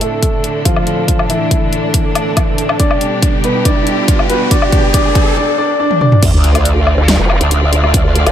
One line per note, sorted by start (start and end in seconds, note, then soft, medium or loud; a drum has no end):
0.00 2.76 A2 medium
0.00 2.76 D3 medium
0.00 0.57 A3 medium
0.00 0.74 C4 medium
0.00 5.33 D4 medium
0.00 5.37 D4 medium
0.00 2.76 A4 medium
0.00 3.71 A4 medium
0.00 0.57 A4 medium
0.00 3.93 D5 medium
0.00 0.48 G5 medium
0.00 closed hi-hat soft
0.00 riser medium
0.23 kick medium
0.23 closed hi-hat medium
0.44 closed hi-hat medium
0.65 1.21 F3 medium
0.65 1.21 F4 medium
0.65 kick loud
0.65 closed hi-hat medium
0.76 low woodblock medium
0.87 closed hi-hat medium
1.08 kick medium
1.08 closed hi-hat medium
1.19 low woodblock medium
1.30 2.71 E3 medium
1.30 2.71 E4 medium
1.30 closed hi-hat medium
1.51 kick medium
1.51 closed hi-hat medium
1.73 closed hi-hat medium
1.94 kick medium
1.94 closed hi-hat medium
2.15 closed hi-hat medium
2.15 low woodblock medium
2.37 kick medium
2.37 closed hi-hat medium
2.37 low woodblock medium
2.58 closed hi-hat medium
2.69 low woodblock medium
2.80 5.34 B2 medium
2.80 5.34 G3 medium
2.80 3.36 D4 medium
2.80 5.34 G4 medium
2.80 3.36 D5 medium
2.80 kick loud
2.80 closed hi-hat medium
2.91 low woodblock medium
2.98 5.37 B4 medium
2.98 closed hi-hat medium
3.22 kick loud
3.22 closed hi-hat medium
3.36 5.37 G5 medium
3.44 3.64 B3 medium
3.44 3.64 B4 medium
3.44 closed hi-hat medium
3.65 4.21 D4 medium
3.65 4.21 D5 medium
3.65 kick loud
3.65 closed hi-hat medium
3.87 closed hi-hat medium
4.08 kick loud
4.08 closed hi-hat medium
4.19 low woodblock medium
4.30 4.49 B3 medium
4.30 4.49 B4 medium
4.30 closed hi-hat medium
4.51 4.92 D4 medium
4.51 4.92 D5 loud
4.51 kick loud
4.51 closed hi-hat medium
4.62 low woodblock medium
4.72 kick loud
4.72 closed hi-hat medium
4.94 5.35 D4 medium
4.94 5.35 D5 loud
4.94 kick loud
4.94 closed hi-hat medium
5.15 kick loud
5.15 closed hi-hat soft
5.37 5.57 D4 medium
5.37 5.57 D5 loud
5.37 swell medium
5.58 5.78 D4 medium
5.58 5.78 D5 loud
5.80 5.99 D4 medium
5.80 6.00 D5 loud
5.91 high tom medium
6.01 6.21 D4 medium
6.01 6.21 D5 loud
6.01 mid tom medium
6.12 mid tom medium
6.22 6.32 D2 medium
6.22 8.32 D3 medium
6.22 8.32 A3 medium
6.22 8.32 F4 medium
6.22 8.32 D5 medium
6.22 kick loud
6.22 closed hi-hat medium
6.22 crash loud
6.22 sub drop medium
6.34 6.96 D2 medium
6.44 closed hi-hat medium
6.55 8.32 A4 medium
6.55 closed hi-hat medium
6.55 low woodblock soft
6.65 closed hi-hat medium
6.80 8.32 F5 medium
6.87 low woodblock medium
6.98 7.18 D2 loud
7.08 snare loud
7.08 closed hi-hat medium
7.19 7.39 F1 loud
7.30 low woodblock medium
7.41 8.25 D2 medium
7.41 closed hi-hat medium
7.51 closed hi-hat medium
7.73 closed hi-hat medium
7.84 low woodblock medium
7.94 kick loud
7.94 closed hi-hat medium
8.15 closed hi-hat medium
8.27 8.32 A1 loud
8.27 closed hi-hat medium
8.27 low woodblock soft